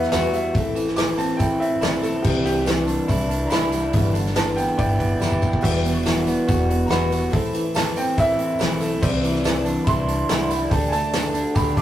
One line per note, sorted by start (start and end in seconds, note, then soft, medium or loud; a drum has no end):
0.00 0.13 B2 medium
0.00 0.12 E3 soft
0.00 0.75 E3 medium
0.00 0.13 G3 soft
0.00 0.13 B3 soft
0.00 0.55 B3 medium
0.00 0.11 F#4 medium
0.00 0.13 F#4 soft
0.00 0.11 B4 medium
0.00 0.11 E5 medium
0.00 snare soft
0.12 0.23 E2 medium
0.12 0.48 E2 medium
0.12 0.24 B2 medium
0.12 0.24 E3 medium
0.12 0.23 G3 medium
0.12 0.22 B3 medium
0.12 0.21 F#4 medium
0.12 0.32 B4 medium
0.12 0.33 E5 medium
0.12 snare loud
0.12 open hi-hat medium
0.12 tambourine medium
0.22 0.32 E3 soft
0.22 0.33 G3 soft
0.22 0.34 B3 soft
0.22 0.33 F#4 soft
0.33 0.44 E3 medium
0.33 0.45 G3 medium
0.33 0.44 B3 medium
0.33 0.42 F#4 medium
0.33 0.75 E5 medium
0.33 open hi-hat medium
0.33 tambourine medium
0.43 0.55 G3 soft
0.43 0.55 B3 soft
0.43 0.55 F#4 medium
0.47 0.54 E3 soft
0.54 1.25 A1 loud
0.54 0.87 A2 medium
0.54 0.87 E3 medium
0.54 0.87 A3 medium
0.54 0.87 C4 medium
0.54 0.84 E4 medium
0.54 kick loud
0.54 open hi-hat medium
0.75 0.96 E3 medium
0.75 open hi-hat medium
0.75 tambourine medium
0.85 0.96 A3 soft
0.85 0.97 C4 soft
0.85 0.97 E4 medium
0.85 snare soft
0.96 1.18 A2 medium
0.96 1.17 E3 medium
0.96 1.18 A3 medium
0.96 1.19 C4 medium
0.96 1.19 E4 medium
0.96 1.18 D6 loud
0.96 snare loud
0.96 open hi-hat medium
0.96 tambourine medium
1.18 1.51 E3 medium
1.18 1.51 A3 medium
1.18 1.50 C4 medium
1.18 1.49 E4 medium
1.18 1.39 A5 loud
1.18 open hi-hat medium
1.18 tambourine medium
1.37 1.75 A1 loud
1.37 1.81 E4 medium
1.37 1.59 G5 medium
1.37 kick loud
1.37 open hi-hat medium
1.37 tambourine medium
1.50 1.81 A3 soft
1.50 1.82 C4 soft
1.50 1.82 E4 soft
1.60 2.25 C4 medium
1.60 1.81 E5 medium
1.60 open hi-hat medium
1.60 tambourine soft
1.81 2.17 B1 medium
1.81 1.93 A2 medium
1.81 1.93 E3 medium
1.81 1.93 A3 medium
1.81 1.93 C4 medium
1.81 1.92 E4 loud
1.81 2.03 D5 medium
1.81 snare loud
1.81 open hi-hat medium
1.81 tambourine medium
1.93 2.02 A3 soft
1.93 2.04 C4 medium
1.93 2.04 E4 medium
2.02 2.14 E3 medium
2.02 2.14 A3 medium
2.02 2.13 C4 medium
2.02 2.11 E4 medium
2.02 2.24 A4 medium
2.02 open hi-hat medium
2.02 tambourine medium
2.12 2.25 A3 soft
2.12 2.25 C4 soft
2.12 2.24 E4 medium
2.22 2.95 C2 loud
2.22 2.56 C3 medium
2.22 2.57 E3 medium
2.22 2.57 G3 medium
2.22 2.57 D4 medium
2.22 2.56 E4 medium
2.22 2.44 G4 medium
2.22 kick loud
2.22 crash medium
2.44 2.65 E3 medium
2.44 2.66 G4 loud
2.44 open hi-hat medium
2.44 tambourine medium
2.57 2.66 G3 soft
2.57 2.67 D4 soft
2.57 2.67 E4 medium
2.66 2.88 C3 medium
2.66 2.86 E3 medium
2.66 2.87 G3 medium
2.66 2.87 D4 medium
2.66 2.89 E4 medium
2.66 snare loud
2.66 open hi-hat medium
2.66 tambourine medium
2.87 3.20 E3 medium
2.87 3.20 G3 medium
2.87 3.19 D4 medium
2.87 3.17 E4 medium
2.87 open hi-hat medium
2.87 tambourine medium
3.08 3.45 C2 loud
3.08 3.50 E4 medium
3.08 kick loud
3.08 open hi-hat medium
3.08 tambourine medium
3.18 3.49 G3 soft
3.18 3.50 D4 medium
3.18 3.50 E4 medium
3.28 3.93 D4 medium
3.28 open hi-hat medium
3.28 tambourine soft
3.47 3.62 C3 medium
3.47 3.62 G3 medium
3.47 3.50 A#5 medium
3.47 tambourine medium
3.51 3.87 C2 medium
3.51 3.62 E3 medium
3.51 3.61 D4 medium
3.51 3.59 E4 medium
3.51 4.34 B5 loud
3.51 snare loud
3.51 open hi-hat medium
3.60 3.71 G3 soft
3.60 3.72 D4 soft
3.60 3.72 E4 medium
3.71 3.83 E3 medium
3.71 3.84 G3 medium
3.71 3.83 D4 medium
3.71 3.80 E4 medium
3.71 open hi-hat medium
3.71 tambourine medium
3.82 3.95 G3 soft
3.82 3.95 D4 medium
3.82 3.93 E4 medium
3.93 4.64 G1 loud
3.93 4.26 G2 medium
3.93 4.26 D3 medium
3.93 4.27 E3 medium
3.93 4.27 G3 medium
3.93 4.26 B3 medium
3.93 4.25 E4 loud
3.93 kick loud
3.93 open hi-hat medium
3.93 tambourine soft
4.13 5.20 D3 medium
4.13 open hi-hat medium
4.13 tambourine medium
4.26 4.35 G3 medium
4.26 4.35 B3 medium
4.26 4.36 E4 medium
4.26 snare soft
4.30 4.35 E3 soft
4.35 4.57 G2 medium
4.35 4.57 D3 medium
4.35 4.55 E3 medium
4.35 4.55 G3 medium
4.35 4.57 B3 medium
4.35 4.58 E4 medium
4.35 4.57 A5 medium
4.35 snare loud
4.35 open hi-hat medium
4.35 tambourine medium
4.56 4.89 E3 medium
4.56 4.89 G3 medium
4.56 4.88 B3 medium
4.56 4.87 E4 medium
4.56 4.77 G5 loud
4.56 open hi-hat medium
4.56 tambourine medium
4.78 5.14 G1 loud
4.78 5.21 E4 medium
4.78 6.02 D5 medium
4.78 6.02 G5 loud
4.78 kick loud
4.78 open hi-hat medium
4.78 tambourine medium
4.89 5.19 E3 soft
4.89 5.20 G3 soft
4.89 5.20 B3 soft
4.89 5.20 E4 medium
4.99 5.63 B3 medium
4.99 kick medium
4.99 open hi-hat medium
4.99 tambourine soft
5.19 5.56 F#1 medium
5.19 5.42 G2 medium
5.19 5.42 D3 medium
5.19 5.39 E3 medium
5.19 5.40 G3 medium
5.19 5.41 B3 medium
5.19 5.42 E4 medium
5.19 snare medium
5.19 tambourine loud
5.32 kick medium
5.40 5.52 E3 medium
5.40 5.52 G3 medium
5.40 5.52 B3 medium
5.40 5.50 E4 medium
5.40 kick medium
5.40 tambourine medium
5.52 5.61 E3 soft
5.52 5.61 G3 medium
5.52 5.61 B3 medium
5.52 5.63 E4 medium
5.52 kick medium
5.61 6.34 E1 loud
5.61 5.94 E2 medium
5.61 5.95 B2 medium
5.61 5.95 E3 medium
5.61 5.94 G3 medium
5.61 5.93 B3 loud
5.61 5.91 F#4 loud
5.61 5.91 G4 loud
5.61 5.91 E5 loud
5.61 kick loud
5.61 crash loud
5.85 6.91 B2 medium
5.85 open hi-hat medium
5.85 tambourine medium
5.93 6.02 E3 soft
5.93 6.03 G3 medium
5.93 6.04 B3 medium
5.93 6.04 F#4 medium
6.03 6.26 E2 medium
6.03 6.26 B2 medium
6.03 6.23 E3 medium
6.03 6.24 G3 medium
6.03 6.24 B3 medium
6.03 6.34 F#4 medium
6.03 6.26 F#4 medium
6.03 6.34 G4 medium
6.03 6.34 E5 medium
6.03 snare loud
6.03 open hi-hat medium
6.03 tambourine loud
6.24 6.57 E3 medium
6.24 6.56 G3 medium
6.24 6.55 B3 medium
6.24 6.54 F#4 medium
6.24 tambourine medium
6.28 open hi-hat medium
6.47 6.84 E1 loud
6.47 6.89 F#4 medium
6.47 6.76 F#4 medium
6.47 6.76 G4 medium
6.47 6.76 G5 medium
6.47 kick loud
6.47 open hi-hat medium
6.47 tambourine medium
6.55 6.87 E3 soft
6.55 6.88 G3 medium
6.55 6.88 B3 medium
6.55 6.88 F#4 medium
6.70 7.33 B3 medium
6.70 open hi-hat medium
6.70 tambourine soft
6.86 7.10 E2 medium
6.86 7.11 B2 medium
6.86 7.06 E3 medium
6.86 7.08 G3 medium
6.86 7.10 B3 medium
6.86 7.10 F#4 medium
6.86 6.89 A#5 medium
6.86 open hi-hat medium
6.90 7.26 E1 medium
6.90 7.19 F#4 medium
6.90 7.19 G4 medium
6.90 7.19 E5 medium
6.90 7.73 B5 loud
6.90 snare loud
6.90 tambourine medium
7.07 7.20 E3 medium
7.07 7.20 G3 medium
7.07 7.19 B3 medium
7.07 7.17 F#4 medium
7.12 open hi-hat medium
7.12 tambourine medium
7.19 7.30 E3 soft
7.19 7.31 G3 soft
7.19 7.32 B3 medium
7.19 7.31 F#4 medium
7.30 8.03 A1 loud
7.30 7.63 A2 medium
7.30 7.64 E3 medium
7.30 7.64 A3 medium
7.30 7.65 C4 medium
7.30 7.63 E4 medium
7.30 7.61 A4 loud
7.30 7.61 C5 medium
7.30 7.61 E5 loud
7.30 kick loud
7.30 open hi-hat medium
7.54 7.76 E3 medium
7.54 open hi-hat medium
7.54 tambourine medium
7.64 7.74 A3 soft
7.64 7.75 C4 soft
7.64 7.75 E4 medium
7.74 7.96 A2 medium
7.74 7.95 E3 medium
7.74 7.96 A3 medium
7.74 7.97 C4 medium
7.74 7.97 E4 medium
7.74 8.03 A4 medium
7.74 8.03 C5 medium
7.74 8.04 E5 medium
7.74 7.96 A5 medium
7.74 snare loud
7.74 open hi-hat medium
7.74 tambourine loud
7.96 8.28 E3 medium
7.96 8.29 A3 medium
7.96 8.29 C4 medium
7.96 8.28 E4 medium
7.96 8.17 G5 loud
7.96 open hi-hat medium
7.96 tambourine medium
8.17 8.53 A1 loud
8.17 8.59 E4 medium
8.17 8.45 A4 medium
8.17 8.45 C5 medium
8.17 8.46 E5 medium
8.17 9.42 E5 loud
8.17 kick loud
8.17 open hi-hat medium
8.17 tambourine medium
8.29 8.60 A3 soft
8.29 8.60 C4 soft
8.29 8.61 E4 medium
8.39 9.03 C4 medium
8.39 open hi-hat medium
8.39 tambourine soft
8.59 8.95 B1 loud
8.59 8.81 A2 medium
8.59 8.81 E3 medium
8.59 8.82 A3 loud
8.59 8.82 C4 medium
8.59 8.82 E4 medium
8.59 8.88 A4 medium
8.59 8.87 C5 medium
8.59 8.88 E5 medium
8.59 snare loud
8.59 open hi-hat medium
8.59 tambourine medium
8.81 8.93 E3 medium
8.81 8.93 A3 medium
8.81 8.93 C4 medium
8.81 open hi-hat medium
8.81 tambourine medium
8.85 8.92 E4 medium
8.93 9.04 A3 medium
8.93 9.04 C4 medium
8.93 9.03 E4 medium
9.02 9.73 C2 loud
9.02 9.35 C3 medium
9.02 9.35 E3 medium
9.02 9.35 G3 loud
9.02 9.34 D4 loud
9.02 9.30 C5 loud
9.02 9.31 D5 loud
9.02 9.31 E5 loud
9.02 kick loud
9.02 crash loud
9.07 9.33 E4 loud
9.23 9.42 E3 medium
9.23 open hi-hat medium
9.23 tambourine medium
9.34 9.45 G3 medium
9.34 9.45 D4 medium
9.34 9.45 E4 medium
9.34 snare soft
9.44 9.56 C3 medium
9.44 9.56 E3 medium
9.44 9.56 G3 loud
9.44 9.54 D4 loud
9.44 9.53 E4 medium
9.44 9.72 C5 medium
9.44 9.72 D5 medium
9.44 9.73 E5 medium
9.44 snare loud
9.44 open hi-hat medium
9.44 tambourine loud
9.55 9.65 G3 soft
9.55 9.66 D4 medium
9.55 9.66 E4 medium
9.65 9.97 E3 medium
9.65 9.98 G3 medium
9.65 9.97 D4 medium
9.65 open hi-hat medium
9.65 tambourine medium
9.69 9.96 E4 medium
9.84 10.22 C2 loud
9.84 10.28 E4 medium
9.84 10.14 C5 medium
9.84 10.14 D5 medium
9.84 10.14 E5 medium
9.84 9.87 B5 medium
9.84 10.49 C6 loud
9.84 kick loud
9.84 open hi-hat medium
9.84 tambourine medium
9.97 10.29 G3 soft
9.97 10.30 D4 soft
9.97 10.29 E4 medium
10.08 10.71 D4 medium
10.08 open hi-hat medium
10.08 tambourine soft
10.28 10.64 C2 loud
10.28 10.40 C3 medium
10.28 10.40 E3 medium
10.28 10.40 G3 medium
10.28 10.40 D4 medium
10.28 10.56 C5 medium
10.28 10.56 D5 medium
10.28 10.57 F#5 medium
10.28 snare loud
10.28 open hi-hat medium
10.28 tambourine medium
10.32 10.38 E4 medium
10.39 10.51 G3 soft
10.39 10.51 D4 soft
10.39 10.50 E4 medium
10.50 10.61 E3 medium
10.50 10.62 G3 medium
10.50 10.61 D4 medium
10.50 10.70 B5 medium
10.50 open hi-hat medium
10.50 tambourine medium
10.54 10.59 E4 medium
10.60 10.71 G3 soft
10.60 10.71 D4 medium
10.60 10.71 E4 medium
10.70 11.41 D2 loud
10.70 11.03 D3 medium
10.70 11.03 A3 medium
10.70 11.04 D4 loud
10.70 10.98 A4 loud
10.70 10.99 D5 loud
10.70 10.99 G5 loud
10.70 10.91 A5 medium
10.70 kick loud
10.70 open hi-hat medium
10.70 tambourine soft
10.74 11.03 G4 medium
10.88 10.91 G#5 medium
10.88 11.33 A5 loud
10.92 11.82 A3 medium
10.92 open hi-hat medium
10.92 tambourine medium
11.04 11.13 A3 soft
11.04 11.14 D4 medium
11.04 11.14 G4 medium
11.12 11.34 D3 medium
11.12 11.35 A3 medium
11.12 11.36 D4 loud
11.12 11.41 A4 medium
11.12 11.41 D5 medium
11.12 11.41 E5 medium
11.12 snare loud
11.12 open hi-hat medium
11.12 tambourine loud
11.17 11.36 G4 medium
11.34 11.67 D3 medium
11.34 11.68 A3 medium
11.34 11.67 D4 medium
11.34 11.66 G4 medium
11.34 open hi-hat medium
11.34 tambourine medium
11.54 11.82 D2 loud
11.54 11.82 G4 medium
11.54 11.82 A4 medium
11.54 11.82 D5 medium
11.54 11.82 G5 medium
11.54 11.77 B5 loud
11.54 kick loud
11.54 open hi-hat medium
11.54 tambourine medium
11.67 11.82 A3 soft
11.67 11.82 D4 medium
11.67 11.82 G4 medium
11.76 11.82 D4 medium
11.76 11.82 D6 medium
11.76 kick medium
11.76 open hi-hat medium